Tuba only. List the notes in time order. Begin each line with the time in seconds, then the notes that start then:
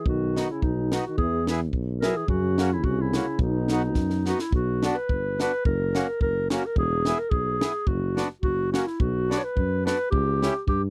0.05 B1
0.63 B1
1.18 E2
1.73 B1
2.28 F#2
2.84 C2
3.39 B1
3.95 F#2
4.53 B1
5.09 G1
5.65 F#1
6.21 F#1
6.76 E1
7.31 B1
7.87 F#1
8.43 F#1
9.00 B1
9.57 F#2
10.12 C#2
10.68 G2